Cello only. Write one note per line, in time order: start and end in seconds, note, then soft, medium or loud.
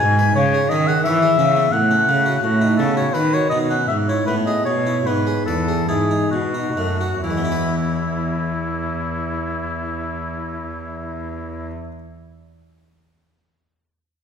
0.01 0.34 G#2 medium
0.36 0.69 C#3 medium
0.71 1.04 D#3 medium
1.05 1.38 E3 medium
1.40 1.73 C#3 medium
1.74 2.08 A2 medium
2.09 2.43 C#3 medium
2.44 2.81 A2 medium
2.79 3.15 C#3 medium
3.15 3.51 D#3 medium
3.52 3.89 B2 medium
3.89 4.27 G#2 medium
4.27 4.65 A2 medium
4.67 5.05 B2 medium
5.07 5.46 G#2 medium
5.47 5.88 E2 medium
5.89 6.31 G#2 medium
6.32 6.76 B2 medium
6.77 7.22 F#2 medium
7.24 11.71 E2 medium